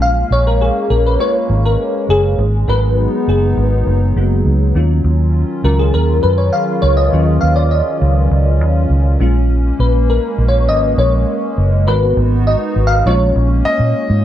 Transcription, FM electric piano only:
Already playing: G#3 C#4 F4
0.02 F5
0.32 C#5
0.47 A#4
0.61 G#4
0.90 A#4
1.06 B4
1.19 G#3 C#4 F4 C#5
1.65 A#4
2.10 G#4
2.68 B3 F#4 A#4 B4
3.29 G#4
4.16 A#3 B3 F#4
4.75 F#3 C#4 F4
5.64 F#3 C#4 F4 A#4
5.79 G#4
5.94 A#4
6.23 B4
6.38 C#5
6.53 F5
6.82 C#5
6.97 D#5
7.13 F#3 C#4 F4
7.41 F5
7.56 D5
7.71 D#5
9.20 G#3 C#4 F4
9.80 B4
10.10 A#4
10.48 C#5
10.69 D#5
10.98 C#5
11.87 B3 F#4 A#4 B4
12.47 D#5
12.87 F5
13.06 G#3 C#4 F4 C#5

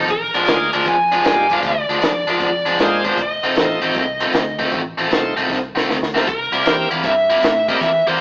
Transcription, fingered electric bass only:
0.09 A#1
0.35 A#1
0.48 D2
0.74 D2
0.86 F2
1.25 G2
1.63 D2
1.89 D2
2.02 F2
2.27 F2
2.41 F2
2.66 F2
2.79 G#2
3.18 F1
3.43 F1
3.56 A1
3.82 A1
3.95 C2
4.33 D2
4.72 A1
4.99 A1
5.11 C2
5.37 C2
5.50 C2
5.75 C2
5.89 D2
6.27 C2
6.52 C2
6.65 E2
6.91 E2
7.04 G2
7.43 A2
7.81 E2
8.07 E2

